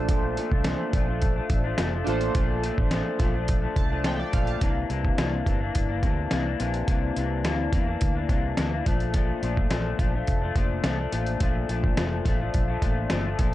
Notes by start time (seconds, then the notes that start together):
Already playing: A#1 D4 F4 A4 C5
0.09 A#2 F3 A3 D4, kick, closed hi-hat
0.37 A#2 F3 A3 D4, closed hi-hat
0.52 C2 F3 A3 D4, kick
0.64 A#2 F3 A3 D4, snare, closed hi-hat
0.93 A#1 A#2 F3 A3 D4, kick, closed hi-hat
1.08 F3 A3 D4
1.22 kick, closed hi-hat
1.36 F3 A3 D4
1.50 A1, kick, closed hi-hat
1.64 F3 A3 D4
1.78 F1 A#2 F3 A3 D4, snare, closed hi-hat
1.92 F3 A3 D4
2.04 A1 A#2 F3 D4 F4 A4, closed hi-hat
2.08 A3 D4 C5
2.21 closed hi-hat
2.35 A#1 A#2 F3 A3 D4, kick, closed hi-hat
2.63 A#2 F3 A3 D4, closed hi-hat
2.77 A1 F3 A3 D4, kick
2.91 A#2 F3 A3 D4, snare, closed hi-hat
3.19 A#1 A#2 F3 A3 D4, kick, snare, closed hi-hat
3.34 F3 A3 D4
3.48 kick, closed hi-hat
3.62 F3 A3 D4
3.76 C2 A5, kick, closed hi-hat
3.90 F3 A3 D4
4.04 A#2 F3 A3 D4 G5, snare, closed hi-hat
4.18 F3 A3 D4 D5
4.32 A#1 A#2 F3 A3 D4 F5, kick, closed hi-hat
4.47 A5, closed hi-hat
4.61 C2 C3 E3 A#3 D4, kick, closed hi-hat
4.89 C2 C3 E3 A#3 D4, closed hi-hat
5.05 kick
5.18 C2 C3 E3 A#3 D4, snare, closed hi-hat
5.46 G1 C3 E3 A#3 D4, kick, closed hi-hat
5.60 E3 A#3 D4
5.75 G1, kick, closed hi-hat
5.89 E3 A#3 D4
6.03 D2 C3 E3 A#3 D4, kick, closed hi-hat
6.31 C2 C3 E3 A#3 D4, snare, closed hi-hat
6.45 E3 A#3 D4
6.60 A#1 C3 E3 A#3 D4, closed hi-hat
6.74 closed hi-hat
6.88 C2 C3 E3 A#3 D4, kick, closed hi-hat
7.16 C2 C3 E3 A#3 D4, closed hi-hat
7.45 D2 C3 E3 A#3 D4, snare, closed hi-hat
7.73 E2 C3 E3 A#3 D4, kick, closed hi-hat
7.87 E3 A#3 D4
8.01 D2, kick, closed hi-hat
8.15 E3 A#3 D4
8.29 C2 C3 E3 A#3 D4, kick, closed hi-hat
8.57 D2 C3 E3 A#3 D4, snare, closed hi-hat
8.71 E3 A#3 D4
8.85 A#1 A#2 F3 A3 D4, kick, closed hi-hat
9.00 closed hi-hat
9.14 A#2 F3 A3 D4, kick, closed hi-hat
9.42 A#1 A#2 F3 A3 D4, closed hi-hat
9.57 kick
9.70 A#1 A#2 F3 A3 D4, snare, closed hi-hat
9.99 A#1 A#2 F3 A3 D4, kick, closed hi-hat
10.14 F3 A3 D4
10.27 F1, kick, closed hi-hat
10.41 F3 A3 D4
10.55 F1 A#2 F3 A3 D4, kick, closed hi-hat
10.84 C2 A#2 F3 A3 D4, snare, closed hi-hat
10.98 F3 A3 D4
11.12 A1 A#2 F3 A3 D4, closed hi-hat
11.26 closed hi-hat
11.40 A#1 A#2 F3 A3 D4, kick, closed hi-hat
11.69 A#1 A#2 F3 A3 D4, closed hi-hat
11.84 kick
11.97 F1 A#2 F3 A3 D4, snare, closed hi-hat
12.25 A1 A#2 F3 A3 D4, kick, snare, closed hi-hat
12.40 F3 A3 D4
12.54 A#1, kick, closed hi-hat
12.68 F3 A3 D4
12.82 A1 A#2 F3 A3 D4, kick, closed hi-hat
13.10 G1 A#2 F3 A3 D4, snare, closed hi-hat
13.24 F3 A3 D4
13.39 A#1 A#2 F3 A3 D4, kick, closed hi-hat